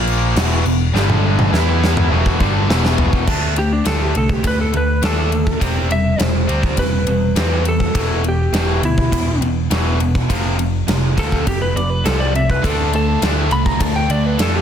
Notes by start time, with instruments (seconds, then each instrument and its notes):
Already playing: picked electric bass A#1, overdriven electric guitar A#2 F3 A#3
0.07 crash
0.35 picked electric bass E1, overdriven electric guitar E2 B2 E3, snare, crash
0.65 picked electric bass E1, overdriven electric guitar E2 B2, crash
0.94 picked electric bass G1, overdriven electric guitar G2 D3 G3, snare
1.10 high tom
1.39 high tom
1.52 picked electric bass E2, overdriven electric guitar E3 B3 E4, snare
1.84 snare
1.97 mid tom
2.10 picked electric bass E1, overdriven electric guitar E2 B2 E3
2.26 kick
2.40 picked electric bass G1, overdriven electric guitar G2 D3 G3, kick
2.69 picked electric bass E1, overdriven electric guitar E2 B2 E3, snare
2.85 snare
2.98 floor tom
3.13 kick
3.27 picked electric bass D2, overdriven electric guitar D3 A3 D4, kick, crash
3.56 overdriven electric guitar D3 A3, lead electric guitar G4, ride
3.73 lead electric guitar D4
3.85 picked electric bass D2, overdriven electric guitar D3 A3 D4, lead electric guitar A4, snare, ride
4.02 lead electric guitar G4
4.14 picked electric bass C2, overdriven electric guitar D3 A3, lead electric guitar A4, ride
4.29 lead electric guitar G4, kick
4.44 picked electric bass D2, overdriven electric guitar D3 A3, lead electric guitar B4, kick, ride
4.61 lead electric guitar A4
4.72 picked electric bass D2, overdriven electric guitar D3 A3, ride
4.77 lead electric guitar B4
5.02 picked electric bass D#2, overdriven electric guitar D3 A3 D4, lead electric guitar A4, snare, ride
5.31 overdriven electric guitar D3 A3, ride
5.47 kick
5.60 picked electric bass E1, overdriven electric guitar C3 G3 C4, kick, ride
5.89 overdriven electric guitar C3 G3, lead electric guitar E5, ride
6.19 picked electric bass E1, overdriven electric guitar C3 G3, lead electric guitar C5, snare, ride
6.47 picked electric bass D2, overdriven electric guitar C3 G3 C4, ride
6.63 kick
6.77 picked electric bass E1, overdriven electric guitar C3 G3, lead electric guitar B4, kick, ride
7.06 picked electric bass E1, overdriven electric guitar C3 G3, ride
7.36 picked electric bass E2, overdriven electric guitar C3 G3 C4, snare, ride
7.65 overdriven electric guitar C3 G3, lead electric guitar A4, ride
7.80 kick
7.94 picked electric bass E1, overdriven electric guitar E2 B2 E3, kick, ride
8.24 overdriven electric guitar E2 B2, ride
8.28 lead electric guitar G4
8.53 picked electric bass E1, overdriven electric guitar E2 B2 E3, snare, ride
8.82 picked electric bass D2, overdriven electric guitar E2 B2, lead electric guitar E4, ride
8.98 kick
9.12 picked electric bass E1, overdriven electric guitar E2 B2, kick, ride
9.41 picked electric bass E1, overdriven electric guitar E2 B2, ride
9.70 picked electric bass E1, overdriven electric guitar E2 B2 E3, snare, ride
10.00 overdriven electric guitar E2 B2, ride
10.15 kick
10.29 picked electric bass F1, overdriven electric guitar F2 C3 F3, kick, ride
10.58 overdriven electric guitar F2 C3, ride
10.88 picked electric bass F1, overdriven electric guitar F2 C3, snare, ride
11.17 picked electric bass D2, overdriven electric guitar F2 C3 F3, lead electric guitar A4, kick, ride
11.32 kick
11.47 picked electric bass F1, overdriven electric guitar F2 C3, lead electric guitar G4, kick, ride
11.62 lead electric guitar B4
11.76 picked electric bass F1, overdriven electric guitar F2 C3, lead electric guitar D5, ride
11.90 lead electric guitar B4
12.05 picked electric bass C2, overdriven electric guitar F2 C3 F3, lead electric guitar A4, snare, ride
12.20 lead electric guitar D5
12.35 overdriven electric guitar F2 C3, lead electric guitar E5, ride
12.50 lead electric guitar B4, kick
12.63 picked electric bass D2, overdriven electric guitar D3 A3 D4, distorted electric guitar F4, lead electric guitar A4, kick, ride
12.93 overdriven electric guitar D3 A3, lead electric guitar A4, ride
13.22 picked electric bass D2, overdriven electric guitar D3 A3 D4, snare, ride
13.51 picked electric bass C2, overdriven electric guitar D3 A3, lead electric guitar B5, ride
13.66 lead electric guitar A#5, kick
13.80 picked electric bass D2, overdriven electric guitar D3 A3, lead electric guitar A5, kick, ride
13.96 lead electric guitar G5
14.10 picked electric bass D2, overdriven electric guitar D3 A3, lead electric guitar D5, ride
14.26 lead electric guitar B4
14.39 picked electric bass F2, overdriven electric guitar D3 A3 D4, lead electric guitar A4, snare, ride
14.55 lead electric guitar G4